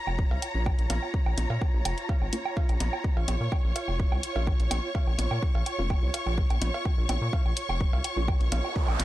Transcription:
Already playing: string section F4 C#5 A#5
0.07 analog synth bass F1, low woodblock
0.19 kick
0.31 analog synth bass C2, cowbell
0.42 closed hi-hat, low woodblock
0.55 analog synth bass A#1, synth stab A#3 C#4 F4
0.66 kick, low woodblock
0.78 analog synth bass A#1, closed hi-hat
0.90 analog synth bass A#1, closed hi-hat, cowbell, percussion blips
1.03 low woodblock
1.14 kick
1.26 analog synth bass A#1, low woodblock
1.37 analog synth bass A#1, closed hi-hat, percussion blips
1.50 analog synth bass A#2, cowbell
1.62 kick, low woodblock
1.74 analog synth bass A#1
1.85 analog synth bass F1, closed hi-hat, low woodblock
1.98 closed hi-hat
2.09 kick, cowbell
2.21 analog synth bass G#1, low woodblock
2.33 synth stab A#3 C#4 F4, closed hi-hat
2.46 low woodblock
2.57 kick, cowbell
2.69 analog synth bass A#1, closed hi-hat, low woodblock
2.80 analog synth bass A#1, closed hi-hat, percussion blips
2.93 low woodblock
3.04 kick
3.17 analog synth bass A#1, string section C#6, cowbell
3.28 analog synth bass A#1, closed hi-hat, percussion blips, low woodblock
3.41 analog synth bass A#2
3.52 kick, low woodblock
3.64 analog synth bass A#1
3.76 closed hi-hat, cowbell
3.88 analog synth bass F1, low woodblock
4.00 kick
4.12 analog synth bass C2, low woodblock
4.23 closed hi-hat
4.36 analog synth bass A#1, synth stab A#3 C#4 F4, cowbell
4.47 kick, low woodblock
4.60 analog synth bass A#1, closed hi-hat
4.71 analog synth bass A#1, closed hi-hat, percussion blips, low woodblock
4.95 kick, cowbell
5.07 analog synth bass A#1, low woodblock
5.18 analog synth bass A#1, closed hi-hat, percussion blips
5.31 analog synth bass A#2, low woodblock
5.42 kick
5.55 analog synth bass A#1, cowbell
5.66 closed hi-hat, low woodblock
5.79 analog synth bass F1, synth stab A#3 C#4 F4
5.90 kick, low woodblock
6.03 analog synth bass C2
6.14 closed hi-hat, cowbell
6.26 analog synth bass A#1, low woodblock
6.38 kick
6.50 analog synth bass A#1, closed hi-hat, low woodblock
6.62 analog synth bass A#1, closed hi-hat, percussion blips
6.74 cowbell
6.85 kick, low woodblock
6.98 analog synth bass A#1
7.09 analog synth bass A#1, closed hi-hat, percussion blips, low woodblock
7.22 analog synth bass A#2
7.33 kick, cowbell
7.45 analog synth bass A#1, low woodblock
7.57 closed hi-hat
7.69 analog synth bass F1, low woodblock
7.81 kick
7.93 analog synth bass C2, cowbell
8.04 closed hi-hat, low woodblock
8.17 analog synth bass A#1, synth stab A#3 C#4 F4
8.28 kick, noise sweep, low woodblock
8.40 analog synth bass A#1, closed hi-hat
8.52 analog synth bass A#1, closed hi-hat, cowbell, percussion blips
8.65 low woodblock
8.76 kick
8.88 analog synth bass A#1, low woodblock
8.99 analog synth bass A#1, closed hi-hat, percussion blips

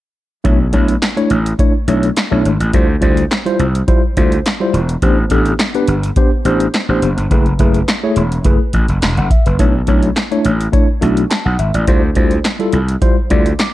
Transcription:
0.44 slap bass B1, tine electric piano A3 D4 E4 C#5, kick, closed hi-hat
0.73 slap bass B1, tine electric piano A3 D4 E4 C#5, kick, closed hi-hat
0.88 closed hi-hat
1.02 snare, clap, closed hi-hat
1.17 tine electric piano A3 D4 E4 C#5, closed hi-hat
1.30 slap bass A1, closed hi-hat
1.46 closed hi-hat
1.59 tine electric piano A3 D4 E4 C#5, kick, closed hi-hat
1.88 slap bass B1, tine electric piano A3 D4 E4 C#5, closed hi-hat
2.03 closed hi-hat
2.17 snare, clap, closed hi-hat
2.31 slap bass B1, tine electric piano A3 D4 E4 C#5
2.45 slap bass G#1, closed hi-hat
2.60 slap bass A1, closed hi-hat
2.73 slap bass D2, tine electric piano G3 E4 F4 C5, kick, closed hi-hat
3.01 slap bass D2, tine electric piano G3 E4 F4 C5, kick, closed hi-hat
3.17 closed hi-hat
3.31 snare, clap, closed hi-hat
3.46 tine electric piano G3 E4 F4 C5, closed hi-hat
3.59 slap bass C2, closed hi-hat
3.75 closed hi-hat
3.88 tine electric piano G3 E4 F4 C5, kick, closed hi-hat
4.17 slap bass D2, tine electric piano G3 E4 F4 C5, kick, closed hi-hat
4.32 closed hi-hat
4.46 snare, clap, closed hi-hat
4.60 tine electric piano G3 E4 F4 C5
4.74 slap bass E1, closed hi-hat
4.89 closed hi-hat
5.02 slap bass A1, tine electric piano B3 D4 G4 C5, kick, closed hi-hat
5.30 slap bass A1, tine electric piano B3 D4 G4 A4, kick, closed hi-hat
5.46 closed hi-hat
5.59 snare, clap, closed hi-hat
5.75 tine electric piano B3 D4 G4 B4, closed hi-hat
5.88 slap bass G1, closed hi-hat
6.03 closed hi-hat
6.16 tine electric piano B3 D4 G4 C5, kick, closed hi-hat
6.45 slap bass A1, tine electric piano B3 D4 G4 C5, closed hi-hat
6.60 closed hi-hat
6.74 snare, clap, closed hi-hat
6.89 slap bass A1, tine electric piano B3 D4 G4 C5
7.02 slap bass F#1, closed hi-hat
7.17 slap bass G1, closed hi-hat
7.31 slap bass F#1, tine electric piano A3 E4 G#4 B4, kick, closed hi-hat
7.46 closed hi-hat
7.59 slap bass F#1, tine electric piano A3 E4 G#4 B4, kick, closed hi-hat
7.74 closed hi-hat
7.88 snare, clap, closed hi-hat
8.03 tine electric piano A3 E4 G#4 C#5
8.16 slap bass E1, closed hi-hat
8.32 closed hi-hat
8.45 slap bass F#1, tine electric piano A3 E4 G#4 B4, kick, closed hi-hat
8.73 slap bass A1, kick, closed hi-hat
8.89 slap bass F#1, closed hi-hat
9.02 slap bass E1, snare, clap, closed hi-hat
9.17 slap bass F#1, tine electric piano F#5, closed hi-hat
9.30 tine electric piano E5, kick, closed hi-hat
9.46 slap bass F#1, tine electric piano B4, closed hi-hat
9.59 slap bass B1, tine electric piano A3 D4 E4 C#5, kick, closed hi-hat
9.87 slap bass B1, tine electric piano A3 D4 E4 C#5, kick, closed hi-hat
10.03 closed hi-hat
10.16 snare, clap, closed hi-hat
10.31 tine electric piano A3 D4 E4 C#5, closed hi-hat
10.45 slap bass A1, closed hi-hat
10.61 closed hi-hat
10.72 tine electric piano A3 D4 E4 C#5, kick, closed hi-hat
11.01 slap bass B1, tine electric piano A3 D4 E4 F#4, closed hi-hat
11.17 closed hi-hat
11.30 tine electric piano A5, snare, clap, closed hi-hat
11.45 slap bass B1, tine electric piano F#5
11.59 slap bass G#1, tine electric piano E5, closed hi-hat
11.74 slap bass A1, tine electric piano D5, closed hi-hat
11.87 slap bass D2, tine electric piano G3 E4 F4 C5, kick, closed hi-hat
12.15 slap bass D2, tine electric piano G3 E4 F4 C5, kick, closed hi-hat
12.31 closed hi-hat
12.45 snare, clap, closed hi-hat
12.59 tine electric piano G3 E4 F4 A4, closed hi-hat
12.73 slap bass C2, closed hi-hat
12.89 closed hi-hat
13.02 tine electric piano G3 E4 F4 C5, kick, closed hi-hat
13.30 slap bass D2, tine electric piano G3 E4 F4 D5, kick, closed hi-hat
13.46 closed hi-hat
13.59 tine electric piano D6, snare, clap, closed hi-hat

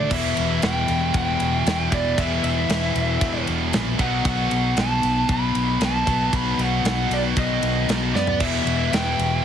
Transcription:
Already playing: distorted electric guitar D3 A3 D4, lead electric guitar D5
0.10 fingered electric bass E1, distorted electric guitar E2 B2 E3 G3 B3 E4, lead electric guitar E5, kick, crash
0.37 fingered electric bass E1, ride
0.62 fingered electric bass E1, lead electric guitar G5, snare, ride
0.88 fingered electric bass E1, ride
1.14 fingered electric bass E1, lead electric guitar G5, kick, ride
1.40 fingered electric bass E1, ride
1.65 fingered electric bass E1, snare, ride
1.92 fingered electric bass E1, distorted electric guitar G3 B3 E4, lead electric guitar D5, kick, ride
1.96 distorted electric guitar E3
2.16 fingered electric bass E1, distorted electric guitar E2 B2 E3 G3 B3, lead electric guitar E5, kick, ride
2.21 distorted electric guitar E4
2.43 fingered electric bass E1, lead electric guitar E5, ride
2.69 fingered electric bass E1, snare, ride
2.95 fingered electric bass E1, ride
3.21 fingered electric bass E1, kick, ride
3.47 fingered electric bass E1, ride
3.73 fingered electric bass A#1, snare, ride
3.98 fingered electric bass B1, distorted electric guitar B2 D#3 F#3 B3 D#4, lead electric guitar F#5, kick, ride
4.25 fingered electric bass B1, lead electric guitar F#5, kick, ride
4.51 fingered electric bass B1, ride
4.77 fingered electric bass B1, lead electric guitar A5, snare, ride
5.03 fingered electric bass B1, ride
5.29 fingered electric bass B1, lead electric guitar B5, kick, ride
5.55 fingered electric bass B1, ride
5.80 fingered electric bass B1, distorted electric guitar B2 D#3 F#3 B3 D#4, snare, ride
5.85 lead electric guitar A5
6.06 fingered electric bass B1, distorted electric guitar B2 D#3 F#3 B3 D#4, kick, ride
6.33 fingered electric bass B1, lead electric guitar B5, kick, ride
6.58 fingered electric bass B1, lead electric guitar F#5, ride
6.84 fingered electric bass B1, lead electric guitar F#5, snare, ride
7.09 fingered electric bass B1, lead electric guitar D5, ride
7.36 fingered electric bass B1, lead electric guitar D#5, kick, ride
7.62 fingered electric bass B1, ride
7.88 fingered electric bass B1, distorted electric guitar B2 D#3 F#3 B3 D#4, snare, ride
8.14 fingered electric bass F#2, lead electric guitar D5, snare
8.27 floor tom
8.39 fingered electric bass E1, distorted electric guitar E2 B2 E3 G3 B3, lead electric guitar E5, kick, crash
8.44 distorted electric guitar E4
8.65 fingered electric bass E1, ride
8.92 fingered electric bass E1, lead electric guitar G5, snare, ride
9.19 fingered electric bass E1, ride

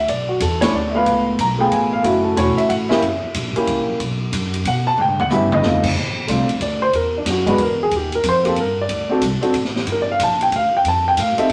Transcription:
0.08 upright bass B1, grand piano D5, kick, ride
0.29 grand piano F#4
0.40 upright bass E2, grand piano A4, kick, hi-hat pedal, ride
0.61 grand piano A3 C#4 D4 E4 C#5, snare, ride
0.73 upright bass D2, grand piano D5, kick
0.91 grand piano A3 B3 E5
0.96 grand piano F4 B4 F5
1.06 upright bass C#2, kick, ride
1.39 upright bass B1, grand piano A#5, kick, hi-hat pedal, ride
1.59 grand piano A3 B3 F4 G#4 G5
1.71 upright bass A1, grand piano G#5, kick, ride
1.93 grand piano F5
2.03 upright bass F#1, grand piano A3 C#4 E4 F#4 E5, kick, ride
2.24 grand piano A4
2.36 upright bass E1, grand piano A3 C#4 E4 F#4 C#5, kick, hi-hat pedal, ride
2.57 grand piano E5, muted upright bass stroke, ride
2.69 upright bass A1, grand piano F#5, kick, ride
2.89 grand piano A#3 C#4 E4 G4 E5, snare
3.02 upright bass F#1, kick, ride
3.22 muted upright bass stroke
3.34 upright bass A#1, kick, hi-hat pedal, ride
3.56 grand piano A#3 C#4 E4 G4, muted upright bass stroke, ride
3.67 upright bass C#2, kick, ride
3.78 upright bass A#1
3.89 upright bass F#1
4.00 upright bass B1, kick, ride
4.32 upright bass F#2, kick, hi-hat pedal, ride
4.54 ride
4.65 upright bass B2, grand piano F#5, kick, ride
4.87 grand piano A5
4.98 upright bass A2, grand piano G5, mid tom
5.08 upright bass G2
5.19 upright bass E2, grand piano F#5, mid tom
5.30 upright bass G2, grand piano B3 C#4 E4 G4, hi-hat pedal, mid tom
5.34 grand piano E5
5.52 grand piano D#5, mid tom
5.62 upright bass F2, grand piano A3 C4 D#4 F4, snare
5.83 kick, crash
5.95 upright bass A#1, kick
6.28 upright bass C2, grand piano A3 C4 D4 F4, kick, hi-hat pedal, ride
6.48 muted upright bass stroke, ride
6.60 upright bass D2, grand piano D5, kick, ride
6.82 grand piano C5
6.93 upright bass E2, grand piano A#4, kick, ride
7.18 grand piano D4
7.25 upright bass F#2, kick, snare, hi-hat pedal, ride
7.30 grand piano F#4
7.46 grand piano G#3 B3 D4 F#4 B4, kick, ride
7.58 upright bass E2, kick, ride
7.63 grand piano A#4
7.83 grand piano G#4
7.91 upright bass D#2, kick, ride
7.96 grand piano G4
8.12 grand piano A#4, ride
8.24 upright bass F2, kick, hi-hat pedal, ride
8.29 grand piano C5
8.43 grand piano A#3 C4 F4 G4, ride
8.49 grand piano A4
8.56 upright bass G2, kick, ride
8.60 grand piano A#4
8.81 grand piano D5
8.89 upright bass D2, kick, ride
9.09 grand piano C4 D4 F#4 A4
9.21 upright bass C2, kick, hi-hat pedal, ride
9.41 grand piano C4 D4 F#4 A4, muted upright bass stroke, ride
9.54 upright bass A1, kick, ride
9.65 snare
9.76 snare
9.87 upright bass G1, kick, ride
9.92 grand piano A#4
10.02 grand piano D5
10.12 grand piano F5
10.19 upright bass A#1, grand piano A5, kick, hi-hat pedal, ride
10.41 grand piano G5, ride
10.52 upright bass D2, grand piano F5, kick, ride
10.73 grand piano G5, muted upright bass stroke
10.84 upright bass F2, grand piano A5, kick, ride
11.08 grand piano G5
11.17 upright bass A2, grand piano F5, kick, hi-hat pedal, ride
11.38 grand piano C4 D#4 G4 A4 E5, muted upright bass stroke, ride
11.49 upright bass C3, kick, ride

